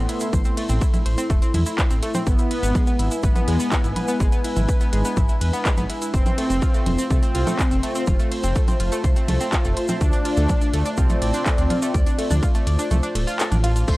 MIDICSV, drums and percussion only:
0, 0, Header, 1, 2, 480
1, 0, Start_track
1, 0, Tempo, 483871
1, 328, Time_signature, 4, 2, 24, 8
1, 13858, End_track
2, 0, Start_track
2, 0, Title_t, "Drums"
2, 90, Note_on_c, 9, 42, 109
2, 90, Note_on_c, 9, 51, 78
2, 189, Note_off_c, 9, 42, 0
2, 189, Note_off_c, 9, 51, 0
2, 198, Note_on_c, 9, 82, 83
2, 210, Note_on_c, 9, 42, 60
2, 297, Note_off_c, 9, 82, 0
2, 309, Note_off_c, 9, 42, 0
2, 329, Note_on_c, 9, 36, 123
2, 330, Note_on_c, 9, 42, 55
2, 330, Note_on_c, 9, 64, 86
2, 332, Note_on_c, 9, 82, 66
2, 428, Note_off_c, 9, 36, 0
2, 429, Note_off_c, 9, 42, 0
2, 429, Note_off_c, 9, 64, 0
2, 431, Note_off_c, 9, 82, 0
2, 443, Note_on_c, 9, 82, 39
2, 450, Note_on_c, 9, 42, 56
2, 542, Note_off_c, 9, 82, 0
2, 549, Note_off_c, 9, 42, 0
2, 570, Note_on_c, 9, 42, 112
2, 570, Note_on_c, 9, 51, 74
2, 669, Note_off_c, 9, 42, 0
2, 669, Note_off_c, 9, 51, 0
2, 685, Note_on_c, 9, 82, 81
2, 690, Note_on_c, 9, 42, 56
2, 784, Note_off_c, 9, 82, 0
2, 789, Note_off_c, 9, 42, 0
2, 808, Note_on_c, 9, 36, 127
2, 809, Note_on_c, 9, 42, 60
2, 810, Note_on_c, 9, 82, 69
2, 908, Note_off_c, 9, 36, 0
2, 909, Note_off_c, 9, 42, 0
2, 909, Note_off_c, 9, 82, 0
2, 930, Note_on_c, 9, 42, 56
2, 930, Note_on_c, 9, 64, 91
2, 932, Note_on_c, 9, 82, 42
2, 1029, Note_off_c, 9, 42, 0
2, 1029, Note_off_c, 9, 64, 0
2, 1031, Note_off_c, 9, 82, 0
2, 1050, Note_on_c, 9, 42, 113
2, 1050, Note_on_c, 9, 51, 76
2, 1149, Note_off_c, 9, 42, 0
2, 1149, Note_off_c, 9, 51, 0
2, 1170, Note_on_c, 9, 42, 58
2, 1170, Note_on_c, 9, 82, 85
2, 1269, Note_off_c, 9, 42, 0
2, 1270, Note_off_c, 9, 82, 0
2, 1288, Note_on_c, 9, 36, 125
2, 1290, Note_on_c, 9, 42, 57
2, 1291, Note_on_c, 9, 82, 63
2, 1388, Note_off_c, 9, 36, 0
2, 1389, Note_off_c, 9, 42, 0
2, 1390, Note_off_c, 9, 82, 0
2, 1409, Note_on_c, 9, 42, 59
2, 1413, Note_on_c, 9, 82, 42
2, 1509, Note_off_c, 9, 42, 0
2, 1512, Note_off_c, 9, 82, 0
2, 1529, Note_on_c, 9, 42, 120
2, 1529, Note_on_c, 9, 51, 72
2, 1529, Note_on_c, 9, 64, 94
2, 1629, Note_off_c, 9, 42, 0
2, 1629, Note_off_c, 9, 51, 0
2, 1629, Note_off_c, 9, 64, 0
2, 1646, Note_on_c, 9, 82, 88
2, 1650, Note_on_c, 9, 42, 58
2, 1745, Note_off_c, 9, 82, 0
2, 1749, Note_off_c, 9, 42, 0
2, 1768, Note_on_c, 9, 36, 127
2, 1769, Note_on_c, 9, 39, 127
2, 1769, Note_on_c, 9, 42, 60
2, 1771, Note_on_c, 9, 82, 79
2, 1868, Note_off_c, 9, 36, 0
2, 1869, Note_off_c, 9, 39, 0
2, 1869, Note_off_c, 9, 42, 0
2, 1871, Note_off_c, 9, 82, 0
2, 1888, Note_on_c, 9, 82, 44
2, 1890, Note_on_c, 9, 42, 61
2, 1988, Note_off_c, 9, 82, 0
2, 1989, Note_off_c, 9, 42, 0
2, 2009, Note_on_c, 9, 42, 116
2, 2009, Note_on_c, 9, 51, 75
2, 2108, Note_off_c, 9, 42, 0
2, 2108, Note_off_c, 9, 51, 0
2, 2125, Note_on_c, 9, 82, 77
2, 2129, Note_on_c, 9, 42, 58
2, 2129, Note_on_c, 9, 64, 91
2, 2224, Note_off_c, 9, 82, 0
2, 2229, Note_off_c, 9, 42, 0
2, 2229, Note_off_c, 9, 64, 0
2, 2248, Note_on_c, 9, 36, 123
2, 2249, Note_on_c, 9, 42, 55
2, 2249, Note_on_c, 9, 82, 73
2, 2347, Note_off_c, 9, 36, 0
2, 2348, Note_off_c, 9, 42, 0
2, 2348, Note_off_c, 9, 82, 0
2, 2366, Note_on_c, 9, 82, 39
2, 2369, Note_on_c, 9, 42, 56
2, 2465, Note_off_c, 9, 82, 0
2, 2468, Note_off_c, 9, 42, 0
2, 2489, Note_on_c, 9, 42, 114
2, 2489, Note_on_c, 9, 51, 71
2, 2588, Note_off_c, 9, 42, 0
2, 2588, Note_off_c, 9, 51, 0
2, 2609, Note_on_c, 9, 42, 58
2, 2617, Note_on_c, 9, 82, 90
2, 2709, Note_off_c, 9, 42, 0
2, 2716, Note_off_c, 9, 82, 0
2, 2729, Note_on_c, 9, 36, 127
2, 2729, Note_on_c, 9, 42, 54
2, 2729, Note_on_c, 9, 64, 94
2, 2732, Note_on_c, 9, 82, 73
2, 2828, Note_off_c, 9, 36, 0
2, 2829, Note_off_c, 9, 42, 0
2, 2829, Note_off_c, 9, 64, 0
2, 2832, Note_off_c, 9, 82, 0
2, 2844, Note_on_c, 9, 82, 45
2, 2849, Note_on_c, 9, 42, 55
2, 2943, Note_off_c, 9, 82, 0
2, 2949, Note_off_c, 9, 42, 0
2, 2969, Note_on_c, 9, 42, 114
2, 2969, Note_on_c, 9, 51, 77
2, 3068, Note_off_c, 9, 42, 0
2, 3068, Note_off_c, 9, 51, 0
2, 3086, Note_on_c, 9, 82, 84
2, 3089, Note_on_c, 9, 42, 59
2, 3185, Note_off_c, 9, 82, 0
2, 3188, Note_off_c, 9, 42, 0
2, 3204, Note_on_c, 9, 82, 70
2, 3209, Note_on_c, 9, 36, 127
2, 3209, Note_on_c, 9, 42, 54
2, 3303, Note_off_c, 9, 82, 0
2, 3308, Note_off_c, 9, 36, 0
2, 3308, Note_off_c, 9, 42, 0
2, 3329, Note_on_c, 9, 42, 55
2, 3329, Note_on_c, 9, 64, 95
2, 3331, Note_on_c, 9, 82, 43
2, 3428, Note_off_c, 9, 42, 0
2, 3428, Note_off_c, 9, 64, 0
2, 3431, Note_off_c, 9, 82, 0
2, 3449, Note_on_c, 9, 42, 119
2, 3449, Note_on_c, 9, 51, 76
2, 3548, Note_off_c, 9, 42, 0
2, 3548, Note_off_c, 9, 51, 0
2, 3567, Note_on_c, 9, 82, 79
2, 3570, Note_on_c, 9, 42, 59
2, 3666, Note_off_c, 9, 82, 0
2, 3669, Note_off_c, 9, 42, 0
2, 3687, Note_on_c, 9, 82, 82
2, 3689, Note_on_c, 9, 36, 125
2, 3689, Note_on_c, 9, 39, 127
2, 3689, Note_on_c, 9, 42, 61
2, 3786, Note_off_c, 9, 82, 0
2, 3788, Note_off_c, 9, 36, 0
2, 3788, Note_off_c, 9, 39, 0
2, 3788, Note_off_c, 9, 42, 0
2, 3809, Note_on_c, 9, 42, 55
2, 3812, Note_on_c, 9, 82, 45
2, 3909, Note_off_c, 9, 42, 0
2, 3911, Note_off_c, 9, 82, 0
2, 3929, Note_on_c, 9, 42, 111
2, 3929, Note_on_c, 9, 51, 76
2, 3929, Note_on_c, 9, 64, 98
2, 4028, Note_off_c, 9, 42, 0
2, 4028, Note_off_c, 9, 51, 0
2, 4028, Note_off_c, 9, 64, 0
2, 4046, Note_on_c, 9, 82, 90
2, 4049, Note_on_c, 9, 42, 57
2, 4145, Note_off_c, 9, 82, 0
2, 4148, Note_off_c, 9, 42, 0
2, 4169, Note_on_c, 9, 36, 121
2, 4169, Note_on_c, 9, 42, 53
2, 4169, Note_on_c, 9, 82, 79
2, 4268, Note_off_c, 9, 36, 0
2, 4268, Note_off_c, 9, 42, 0
2, 4269, Note_off_c, 9, 82, 0
2, 4287, Note_on_c, 9, 82, 41
2, 4289, Note_on_c, 9, 42, 54
2, 4386, Note_off_c, 9, 82, 0
2, 4388, Note_off_c, 9, 42, 0
2, 4409, Note_on_c, 9, 42, 108
2, 4409, Note_on_c, 9, 51, 72
2, 4508, Note_off_c, 9, 42, 0
2, 4508, Note_off_c, 9, 51, 0
2, 4526, Note_on_c, 9, 82, 81
2, 4529, Note_on_c, 9, 42, 52
2, 4529, Note_on_c, 9, 64, 93
2, 4625, Note_off_c, 9, 82, 0
2, 4629, Note_off_c, 9, 42, 0
2, 4629, Note_off_c, 9, 64, 0
2, 4649, Note_on_c, 9, 36, 127
2, 4649, Note_on_c, 9, 42, 55
2, 4651, Note_on_c, 9, 82, 73
2, 4748, Note_off_c, 9, 36, 0
2, 4748, Note_off_c, 9, 42, 0
2, 4750, Note_off_c, 9, 82, 0
2, 4767, Note_on_c, 9, 82, 41
2, 4769, Note_on_c, 9, 42, 53
2, 4866, Note_off_c, 9, 82, 0
2, 4869, Note_off_c, 9, 42, 0
2, 4889, Note_on_c, 9, 42, 113
2, 4889, Note_on_c, 9, 51, 75
2, 4988, Note_off_c, 9, 42, 0
2, 4988, Note_off_c, 9, 51, 0
2, 5007, Note_on_c, 9, 82, 84
2, 5009, Note_on_c, 9, 42, 58
2, 5106, Note_off_c, 9, 82, 0
2, 5108, Note_off_c, 9, 42, 0
2, 5126, Note_on_c, 9, 82, 65
2, 5129, Note_on_c, 9, 36, 127
2, 5129, Note_on_c, 9, 42, 54
2, 5129, Note_on_c, 9, 64, 92
2, 5225, Note_off_c, 9, 82, 0
2, 5228, Note_off_c, 9, 36, 0
2, 5228, Note_off_c, 9, 42, 0
2, 5228, Note_off_c, 9, 64, 0
2, 5245, Note_on_c, 9, 82, 41
2, 5249, Note_on_c, 9, 42, 56
2, 5344, Note_off_c, 9, 82, 0
2, 5349, Note_off_c, 9, 42, 0
2, 5369, Note_on_c, 9, 42, 116
2, 5369, Note_on_c, 9, 51, 73
2, 5468, Note_off_c, 9, 42, 0
2, 5468, Note_off_c, 9, 51, 0
2, 5490, Note_on_c, 9, 42, 55
2, 5493, Note_on_c, 9, 82, 74
2, 5589, Note_off_c, 9, 42, 0
2, 5592, Note_off_c, 9, 82, 0
2, 5609, Note_on_c, 9, 36, 123
2, 5609, Note_on_c, 9, 39, 126
2, 5609, Note_on_c, 9, 42, 55
2, 5609, Note_on_c, 9, 82, 75
2, 5708, Note_off_c, 9, 36, 0
2, 5708, Note_off_c, 9, 39, 0
2, 5708, Note_off_c, 9, 42, 0
2, 5708, Note_off_c, 9, 82, 0
2, 5726, Note_on_c, 9, 82, 46
2, 5729, Note_on_c, 9, 42, 55
2, 5729, Note_on_c, 9, 64, 98
2, 5825, Note_off_c, 9, 82, 0
2, 5828, Note_off_c, 9, 42, 0
2, 5828, Note_off_c, 9, 64, 0
2, 5849, Note_on_c, 9, 42, 117
2, 5849, Note_on_c, 9, 51, 76
2, 5948, Note_off_c, 9, 42, 0
2, 5948, Note_off_c, 9, 51, 0
2, 5969, Note_on_c, 9, 42, 56
2, 5970, Note_on_c, 9, 82, 82
2, 6068, Note_off_c, 9, 42, 0
2, 6069, Note_off_c, 9, 82, 0
2, 6088, Note_on_c, 9, 36, 121
2, 6089, Note_on_c, 9, 42, 53
2, 6095, Note_on_c, 9, 82, 74
2, 6188, Note_off_c, 9, 36, 0
2, 6188, Note_off_c, 9, 42, 0
2, 6194, Note_off_c, 9, 82, 0
2, 6209, Note_on_c, 9, 42, 52
2, 6209, Note_on_c, 9, 64, 97
2, 6211, Note_on_c, 9, 82, 37
2, 6309, Note_off_c, 9, 42, 0
2, 6309, Note_off_c, 9, 64, 0
2, 6310, Note_off_c, 9, 82, 0
2, 6329, Note_on_c, 9, 42, 110
2, 6329, Note_on_c, 9, 51, 75
2, 6428, Note_off_c, 9, 42, 0
2, 6428, Note_off_c, 9, 51, 0
2, 6449, Note_on_c, 9, 42, 54
2, 6456, Note_on_c, 9, 82, 70
2, 6548, Note_off_c, 9, 42, 0
2, 6556, Note_off_c, 9, 82, 0
2, 6567, Note_on_c, 9, 82, 62
2, 6568, Note_on_c, 9, 36, 123
2, 6569, Note_on_c, 9, 42, 52
2, 6666, Note_off_c, 9, 82, 0
2, 6668, Note_off_c, 9, 36, 0
2, 6668, Note_off_c, 9, 42, 0
2, 6689, Note_on_c, 9, 42, 54
2, 6689, Note_on_c, 9, 82, 39
2, 6788, Note_off_c, 9, 42, 0
2, 6788, Note_off_c, 9, 82, 0
2, 6808, Note_on_c, 9, 42, 111
2, 6808, Note_on_c, 9, 51, 80
2, 6808, Note_on_c, 9, 64, 100
2, 6908, Note_off_c, 9, 42, 0
2, 6908, Note_off_c, 9, 51, 0
2, 6908, Note_off_c, 9, 64, 0
2, 6928, Note_on_c, 9, 82, 84
2, 6929, Note_on_c, 9, 42, 56
2, 7027, Note_off_c, 9, 82, 0
2, 7028, Note_off_c, 9, 42, 0
2, 7048, Note_on_c, 9, 36, 124
2, 7048, Note_on_c, 9, 42, 52
2, 7051, Note_on_c, 9, 82, 67
2, 7147, Note_off_c, 9, 36, 0
2, 7147, Note_off_c, 9, 42, 0
2, 7150, Note_off_c, 9, 82, 0
2, 7169, Note_on_c, 9, 42, 55
2, 7169, Note_on_c, 9, 82, 41
2, 7268, Note_off_c, 9, 42, 0
2, 7268, Note_off_c, 9, 82, 0
2, 7288, Note_on_c, 9, 42, 112
2, 7288, Note_on_c, 9, 51, 78
2, 7388, Note_off_c, 9, 42, 0
2, 7388, Note_off_c, 9, 51, 0
2, 7409, Note_on_c, 9, 42, 57
2, 7409, Note_on_c, 9, 64, 98
2, 7415, Note_on_c, 9, 82, 86
2, 7508, Note_off_c, 9, 42, 0
2, 7508, Note_off_c, 9, 64, 0
2, 7514, Note_off_c, 9, 82, 0
2, 7528, Note_on_c, 9, 36, 118
2, 7529, Note_on_c, 9, 39, 120
2, 7529, Note_on_c, 9, 42, 57
2, 7535, Note_on_c, 9, 82, 76
2, 7627, Note_off_c, 9, 36, 0
2, 7628, Note_off_c, 9, 39, 0
2, 7628, Note_off_c, 9, 42, 0
2, 7635, Note_off_c, 9, 82, 0
2, 7650, Note_on_c, 9, 42, 54
2, 7651, Note_on_c, 9, 82, 40
2, 7749, Note_off_c, 9, 42, 0
2, 7750, Note_off_c, 9, 82, 0
2, 7769, Note_on_c, 9, 42, 112
2, 7769, Note_on_c, 9, 51, 78
2, 7869, Note_off_c, 9, 42, 0
2, 7869, Note_off_c, 9, 51, 0
2, 7887, Note_on_c, 9, 82, 76
2, 7889, Note_on_c, 9, 42, 58
2, 7987, Note_off_c, 9, 82, 0
2, 7988, Note_off_c, 9, 42, 0
2, 8001, Note_on_c, 9, 82, 67
2, 8008, Note_on_c, 9, 36, 116
2, 8009, Note_on_c, 9, 42, 56
2, 8009, Note_on_c, 9, 64, 97
2, 8100, Note_off_c, 9, 82, 0
2, 8108, Note_off_c, 9, 36, 0
2, 8108, Note_off_c, 9, 42, 0
2, 8108, Note_off_c, 9, 64, 0
2, 8129, Note_on_c, 9, 42, 54
2, 8130, Note_on_c, 9, 82, 37
2, 8228, Note_off_c, 9, 42, 0
2, 8229, Note_off_c, 9, 82, 0
2, 8249, Note_on_c, 9, 42, 104
2, 8249, Note_on_c, 9, 51, 77
2, 8348, Note_off_c, 9, 42, 0
2, 8348, Note_off_c, 9, 51, 0
2, 8367, Note_on_c, 9, 82, 78
2, 8369, Note_on_c, 9, 42, 58
2, 8466, Note_off_c, 9, 82, 0
2, 8468, Note_off_c, 9, 42, 0
2, 8486, Note_on_c, 9, 82, 59
2, 8488, Note_on_c, 9, 36, 122
2, 8488, Note_on_c, 9, 42, 56
2, 8585, Note_off_c, 9, 82, 0
2, 8588, Note_off_c, 9, 36, 0
2, 8588, Note_off_c, 9, 42, 0
2, 8609, Note_on_c, 9, 42, 55
2, 8609, Note_on_c, 9, 64, 96
2, 8611, Note_on_c, 9, 82, 41
2, 8708, Note_off_c, 9, 42, 0
2, 8708, Note_off_c, 9, 64, 0
2, 8710, Note_off_c, 9, 82, 0
2, 8729, Note_on_c, 9, 42, 112
2, 8729, Note_on_c, 9, 51, 81
2, 8828, Note_off_c, 9, 42, 0
2, 8828, Note_off_c, 9, 51, 0
2, 8849, Note_on_c, 9, 42, 57
2, 8852, Note_on_c, 9, 82, 88
2, 8948, Note_off_c, 9, 42, 0
2, 8951, Note_off_c, 9, 82, 0
2, 8969, Note_on_c, 9, 36, 116
2, 8969, Note_on_c, 9, 42, 57
2, 8970, Note_on_c, 9, 82, 64
2, 9068, Note_off_c, 9, 36, 0
2, 9068, Note_off_c, 9, 42, 0
2, 9069, Note_off_c, 9, 82, 0
2, 9087, Note_on_c, 9, 82, 38
2, 9089, Note_on_c, 9, 42, 58
2, 9186, Note_off_c, 9, 82, 0
2, 9188, Note_off_c, 9, 42, 0
2, 9209, Note_on_c, 9, 42, 108
2, 9209, Note_on_c, 9, 51, 78
2, 9209, Note_on_c, 9, 64, 100
2, 9308, Note_off_c, 9, 42, 0
2, 9308, Note_off_c, 9, 51, 0
2, 9308, Note_off_c, 9, 64, 0
2, 9329, Note_on_c, 9, 42, 57
2, 9331, Note_on_c, 9, 82, 71
2, 9428, Note_off_c, 9, 42, 0
2, 9430, Note_off_c, 9, 82, 0
2, 9446, Note_on_c, 9, 82, 68
2, 9449, Note_on_c, 9, 36, 113
2, 9449, Note_on_c, 9, 39, 121
2, 9449, Note_on_c, 9, 42, 58
2, 9545, Note_off_c, 9, 82, 0
2, 9548, Note_off_c, 9, 36, 0
2, 9548, Note_off_c, 9, 39, 0
2, 9548, Note_off_c, 9, 42, 0
2, 9569, Note_on_c, 9, 42, 56
2, 9570, Note_on_c, 9, 82, 36
2, 9668, Note_off_c, 9, 42, 0
2, 9669, Note_off_c, 9, 82, 0
2, 9689, Note_on_c, 9, 42, 111
2, 9689, Note_on_c, 9, 51, 80
2, 9788, Note_off_c, 9, 42, 0
2, 9788, Note_off_c, 9, 51, 0
2, 9800, Note_on_c, 9, 82, 81
2, 9809, Note_on_c, 9, 42, 57
2, 9809, Note_on_c, 9, 64, 97
2, 9899, Note_off_c, 9, 82, 0
2, 9908, Note_off_c, 9, 42, 0
2, 9908, Note_off_c, 9, 64, 0
2, 9929, Note_on_c, 9, 36, 117
2, 9929, Note_on_c, 9, 42, 54
2, 9930, Note_on_c, 9, 82, 72
2, 10028, Note_off_c, 9, 36, 0
2, 10028, Note_off_c, 9, 42, 0
2, 10029, Note_off_c, 9, 82, 0
2, 10038, Note_on_c, 9, 82, 37
2, 10049, Note_on_c, 9, 42, 57
2, 10137, Note_off_c, 9, 82, 0
2, 10149, Note_off_c, 9, 42, 0
2, 10169, Note_on_c, 9, 42, 104
2, 10169, Note_on_c, 9, 51, 78
2, 10268, Note_off_c, 9, 42, 0
2, 10268, Note_off_c, 9, 51, 0
2, 10283, Note_on_c, 9, 82, 73
2, 10289, Note_on_c, 9, 42, 60
2, 10383, Note_off_c, 9, 82, 0
2, 10389, Note_off_c, 9, 42, 0
2, 10405, Note_on_c, 9, 82, 64
2, 10409, Note_on_c, 9, 36, 115
2, 10409, Note_on_c, 9, 42, 59
2, 10409, Note_on_c, 9, 64, 98
2, 10504, Note_off_c, 9, 82, 0
2, 10508, Note_off_c, 9, 36, 0
2, 10509, Note_off_c, 9, 42, 0
2, 10509, Note_off_c, 9, 64, 0
2, 10529, Note_on_c, 9, 82, 37
2, 10530, Note_on_c, 9, 42, 61
2, 10629, Note_off_c, 9, 42, 0
2, 10629, Note_off_c, 9, 82, 0
2, 10650, Note_on_c, 9, 42, 106
2, 10650, Note_on_c, 9, 51, 82
2, 10749, Note_off_c, 9, 42, 0
2, 10749, Note_off_c, 9, 51, 0
2, 10767, Note_on_c, 9, 82, 79
2, 10770, Note_on_c, 9, 42, 60
2, 10866, Note_off_c, 9, 82, 0
2, 10869, Note_off_c, 9, 42, 0
2, 10884, Note_on_c, 9, 82, 65
2, 10889, Note_on_c, 9, 36, 118
2, 10889, Note_on_c, 9, 42, 58
2, 10983, Note_off_c, 9, 82, 0
2, 10988, Note_off_c, 9, 36, 0
2, 10988, Note_off_c, 9, 42, 0
2, 11005, Note_on_c, 9, 82, 37
2, 11010, Note_on_c, 9, 42, 58
2, 11010, Note_on_c, 9, 64, 99
2, 11105, Note_off_c, 9, 82, 0
2, 11109, Note_off_c, 9, 42, 0
2, 11109, Note_off_c, 9, 64, 0
2, 11129, Note_on_c, 9, 42, 107
2, 11129, Note_on_c, 9, 51, 81
2, 11228, Note_off_c, 9, 42, 0
2, 11228, Note_off_c, 9, 51, 0
2, 11245, Note_on_c, 9, 82, 78
2, 11249, Note_on_c, 9, 42, 60
2, 11344, Note_off_c, 9, 82, 0
2, 11349, Note_off_c, 9, 42, 0
2, 11369, Note_on_c, 9, 36, 117
2, 11369, Note_on_c, 9, 39, 126
2, 11369, Note_on_c, 9, 42, 62
2, 11370, Note_on_c, 9, 82, 64
2, 11468, Note_off_c, 9, 36, 0
2, 11468, Note_off_c, 9, 39, 0
2, 11468, Note_off_c, 9, 42, 0
2, 11469, Note_off_c, 9, 82, 0
2, 11487, Note_on_c, 9, 82, 37
2, 11489, Note_on_c, 9, 42, 59
2, 11587, Note_off_c, 9, 82, 0
2, 11589, Note_off_c, 9, 42, 0
2, 11609, Note_on_c, 9, 42, 106
2, 11609, Note_on_c, 9, 51, 80
2, 11609, Note_on_c, 9, 64, 100
2, 11708, Note_off_c, 9, 42, 0
2, 11708, Note_off_c, 9, 51, 0
2, 11708, Note_off_c, 9, 64, 0
2, 11729, Note_on_c, 9, 42, 59
2, 11729, Note_on_c, 9, 82, 84
2, 11828, Note_off_c, 9, 42, 0
2, 11828, Note_off_c, 9, 82, 0
2, 11849, Note_on_c, 9, 36, 115
2, 11849, Note_on_c, 9, 42, 56
2, 11853, Note_on_c, 9, 82, 67
2, 11948, Note_off_c, 9, 36, 0
2, 11948, Note_off_c, 9, 42, 0
2, 11952, Note_off_c, 9, 82, 0
2, 11969, Note_on_c, 9, 42, 60
2, 11975, Note_on_c, 9, 82, 36
2, 12068, Note_off_c, 9, 42, 0
2, 12074, Note_off_c, 9, 82, 0
2, 12089, Note_on_c, 9, 42, 104
2, 12089, Note_on_c, 9, 51, 76
2, 12188, Note_off_c, 9, 42, 0
2, 12188, Note_off_c, 9, 51, 0
2, 12207, Note_on_c, 9, 82, 78
2, 12210, Note_on_c, 9, 42, 60
2, 12210, Note_on_c, 9, 64, 91
2, 12307, Note_off_c, 9, 82, 0
2, 12309, Note_off_c, 9, 42, 0
2, 12309, Note_off_c, 9, 64, 0
2, 12329, Note_on_c, 9, 36, 115
2, 12329, Note_on_c, 9, 42, 61
2, 12332, Note_on_c, 9, 82, 61
2, 12428, Note_off_c, 9, 36, 0
2, 12428, Note_off_c, 9, 42, 0
2, 12432, Note_off_c, 9, 82, 0
2, 12448, Note_on_c, 9, 82, 39
2, 12449, Note_on_c, 9, 42, 61
2, 12548, Note_off_c, 9, 82, 0
2, 12549, Note_off_c, 9, 42, 0
2, 12569, Note_on_c, 9, 42, 108
2, 12569, Note_on_c, 9, 51, 80
2, 12669, Note_off_c, 9, 42, 0
2, 12669, Note_off_c, 9, 51, 0
2, 12688, Note_on_c, 9, 82, 75
2, 12689, Note_on_c, 9, 42, 62
2, 12788, Note_off_c, 9, 82, 0
2, 12789, Note_off_c, 9, 42, 0
2, 12806, Note_on_c, 9, 82, 60
2, 12809, Note_on_c, 9, 42, 59
2, 12809, Note_on_c, 9, 64, 91
2, 12905, Note_off_c, 9, 82, 0
2, 12908, Note_off_c, 9, 42, 0
2, 12908, Note_off_c, 9, 64, 0
2, 12928, Note_on_c, 9, 82, 40
2, 12930, Note_on_c, 9, 42, 65
2, 13028, Note_off_c, 9, 82, 0
2, 13029, Note_off_c, 9, 42, 0
2, 13049, Note_on_c, 9, 42, 111
2, 13049, Note_on_c, 9, 51, 82
2, 13148, Note_off_c, 9, 42, 0
2, 13148, Note_off_c, 9, 51, 0
2, 13169, Note_on_c, 9, 42, 60
2, 13178, Note_on_c, 9, 82, 75
2, 13269, Note_off_c, 9, 42, 0
2, 13277, Note_off_c, 9, 82, 0
2, 13288, Note_on_c, 9, 82, 67
2, 13289, Note_on_c, 9, 39, 127
2, 13289, Note_on_c, 9, 42, 63
2, 13387, Note_off_c, 9, 82, 0
2, 13389, Note_off_c, 9, 39, 0
2, 13389, Note_off_c, 9, 42, 0
2, 13409, Note_on_c, 9, 42, 62
2, 13409, Note_on_c, 9, 64, 94
2, 13412, Note_on_c, 9, 82, 39
2, 13509, Note_off_c, 9, 42, 0
2, 13509, Note_off_c, 9, 64, 0
2, 13511, Note_off_c, 9, 82, 0
2, 13529, Note_on_c, 9, 42, 110
2, 13529, Note_on_c, 9, 51, 81
2, 13628, Note_off_c, 9, 42, 0
2, 13628, Note_off_c, 9, 51, 0
2, 13649, Note_on_c, 9, 42, 61
2, 13651, Note_on_c, 9, 82, 81
2, 13748, Note_off_c, 9, 42, 0
2, 13750, Note_off_c, 9, 82, 0
2, 13767, Note_on_c, 9, 82, 41
2, 13768, Note_on_c, 9, 36, 116
2, 13769, Note_on_c, 9, 42, 57
2, 13769, Note_on_c, 9, 49, 103
2, 13858, Note_off_c, 9, 36, 0
2, 13858, Note_off_c, 9, 42, 0
2, 13858, Note_off_c, 9, 49, 0
2, 13858, Note_off_c, 9, 82, 0
2, 13858, End_track
0, 0, End_of_file